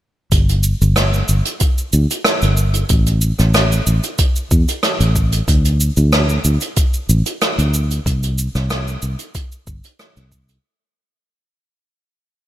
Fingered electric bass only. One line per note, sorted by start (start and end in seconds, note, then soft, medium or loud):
0.32 0.73 G1 medium
0.82 1.21 G1 loud
1.29 1.41 G1 medium
1.93 2.05 D2 medium
2.43 2.83 G1 medium
2.90 3.31 A1 medium
3.39 3.79 A1 medium
3.87 3.99 A1 medium
4.51 4.63 E2 medium
5.00 5.41 A1 medium
5.48 5.89 D2 loud
5.97 6.37 D2 medium
6.45 6.57 D2 medium
7.09 7.21 A1 medium
7.58 7.99 D2 medium
8.06 8.47 C2 loud
8.55 8.95 C2 loud
9.03 9.15 C2 medium
9.67 9.79 G1 medium
10.17 10.57 C2 medium